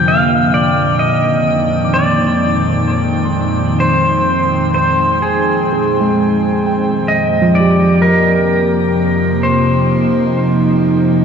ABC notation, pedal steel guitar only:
X:1
M:4/4
L:1/8
Q:1/4=64
K:Fdor
V:1 name="Pedal steel guitar"
f d e2 d4 | c2 c A4 e | d B3 c4 |]